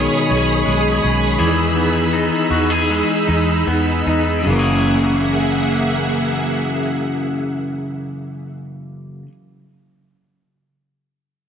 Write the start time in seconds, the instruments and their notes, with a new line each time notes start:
Already playing: clean electric guitar B2 D#3 G#3 C#4 G#4, string machine G#4 C#5 B5 D#6
0.30 fingered electric bass B1, clean electric guitar C#4
0.65 fingered electric bass B1, clean electric guitar G#3
1.02 fingered electric bass B1, clean electric guitar C#4
1.38 fingered electric bass E2, clean electric guitar E3 G#4, string machine D#4 E6
1.76 clean electric guitar B3
2.13 clean electric guitar D#4
2.51 fingered electric bass E2, clean electric guitar F#4
2.70 clean electric guitar G#4
2.90 clean electric guitar G#3
3.27 fingered electric bass E2, clean electric guitar D#4
3.67 fingered electric bass E2, clean electric guitar B3
4.07 fingered electric bass E2, clean electric guitar D#4
4.43 fingered electric bass F#1, clean electric guitar F#2
4.47 clean electric guitar C#3 E3, string machine A#3 G#4 E5 F#5
4.53 clean electric guitar A#3 C#4
4.59 clean electric guitar G#4